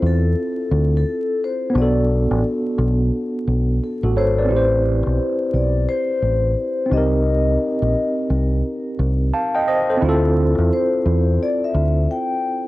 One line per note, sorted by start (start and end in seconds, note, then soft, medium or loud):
0.00 0.34 E2 medium
0.00 1.68 C4 medium
0.00 1.70 E4 medium
0.00 1.72 F4 medium
0.00 1.74 A4 medium
0.06 0.96 A4 medium
0.71 1.03 D2 medium
0.97 1.39 A4 medium
1.44 1.74 C5 medium
1.70 3.41 B3 medium
1.70 3.43 D4 medium
1.75 2.27 B1 loud
1.75 3.45 F#4 medium
1.75 2.41 D5 medium
1.82 3.47 A4 medium
2.31 2.42 A1 medium
2.78 3.10 B1 medium
3.47 3.79 B1 medium
3.84 4.18 A4 medium
4.03 4.15 A1 medium
4.03 4.16 F#4 medium
4.03 4.15 A4 medium
4.16 4.47 G#1 medium
4.16 4.37 A4 medium
4.16 5.50 C5 loud
4.16 4.37 C#5 medium
4.38 4.71 B4 soft
4.38 4.70 D5 medium
4.44 6.84 C4 medium
4.48 5.02 A1 loud
4.48 6.86 E4 medium
4.48 6.88 G4 medium
4.56 6.90 C5 medium
5.06 5.18 B1 medium
5.54 5.85 B1 medium
5.54 5.86 D5 medium
5.89 6.95 C5 loud
6.22 6.54 A1 medium
6.86 9.60 C4 medium
6.86 9.62 D#4 medium
6.91 7.56 C2 medium
6.91 9.64 G4 medium
6.91 8.26 D#5 medium
6.98 9.32 A#4 medium
7.82 7.94 A#1 medium
8.30 8.61 C2 medium
8.99 9.30 C2 medium
9.33 9.54 F5 medium
9.33 9.54 A5 medium
9.55 9.67 D#5 medium
9.55 9.67 G5 medium
9.68 9.88 C5 medium
9.68 9.88 D#5 medium
9.90 10.08 A4 medium
9.90 10.22 C5 medium
9.97 12.68 C4 medium
9.97 12.68 E4 medium
10.02 10.54 D2 loud
10.02 12.68 F4 medium
10.09 12.68 A4 medium
10.58 10.70 E2 medium
10.73 11.43 C5 medium
11.06 11.37 E2 medium
11.43 11.63 D5 loud
11.64 12.11 E5 medium
11.74 12.06 D2 medium
12.11 12.62 G5 medium